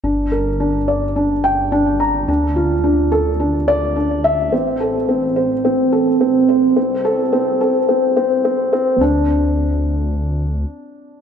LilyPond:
<<
  \new Staff \with { instrumentName = "Felt piano" } { \time 4/4 \key a \phrygian \tempo 4 = 107 d'8 bes'8 d'8 d''8 d'8 g''8 d'8 bes''8 | d'8 f'8 d'8 a'8 d'8 d''8 d'8 e''8 | c'8 a'8 c'8 c''8 c'8 a'8 c'8 c''8 | c'8 a'8 c'8 a'8 c'8 c'8 c'8 c'8 |
d'8 r2. r8 | }
  \new Staff \with { instrumentName = "Detuned saw bass" } { \clef bass \time 4/4 \key a \phrygian g,,1 | d,1 | a,,1 | c,1 |
d,2. r4 | }
>>